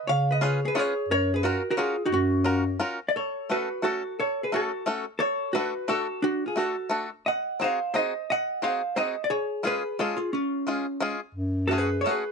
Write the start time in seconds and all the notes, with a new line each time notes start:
0.06 C#3 C#5 F5
0.31 B4 D#5
0.41 C#4 F4 G#4 B4 C#5
0.65 G#4 B4
0.75 C#4 F4 G#4 B4
0.79 C#5
1.09 F#2 A#4 C#5
1.34 G#4 B4
1.43 C#4 F4 F#4 A#4
1.71 F#4 A#4
1.77 C#4 F4 F#4 G#4 A#4
2.05 D#4 F#4
2.10 F#2 C#4 F#4
2.44 C#4 F4 F#4 A#4
2.80 C#4 F4 F#4 A#4
3.09 D5
3.16 A4 C#5
3.50 A3 C#4 F#4 A4 B4
3.82 A3 C#4 F#4 A4
4.20 A4 C#5
4.43 G#4 B4
4.52 A3 C#4 F#4 A4
4.86 A3 C#4 F#4 A4
5.19 A4 C#5
5.53 A3 D4 F#4 A4 B4
5.88 A3 D4 F#4 A4
6.22 D4 F#4
6.46 F4 G#4
6.56 A3 D4 F#4 A4
6.90 A3 D4 F#4 A4
7.26 D#5 F#5
7.60 C4 D#4 F#4 G#4 C5
7.64 F5
7.94 C4 D#4 F#4 G#4 C5 D#5
8.30 D#5 F#5
8.62 C4 D#4 F#4 G#4 C5 F5
8.96 C4 D#4 F#4 G#4 C5 D#5
9.24 D5
9.30 G#4 C#5
9.63 G#3 C#4 F4 G#4 B4
9.99 G#3 C#4 F4 G#4 A4
10.17 F4 G#4
10.33 C#4 F4
10.67 G#3 C#4 F4 G#4
11.00 G#3 C#4 F4 G#4
11.35 F#2
11.67 A3 C#4 F#4 A4
11.72 F#4 G#4
11.78 G#4 B4
12.01 A4 C#5
12.06 A3 C#4 F#4 G#4 B4
12.11 G#4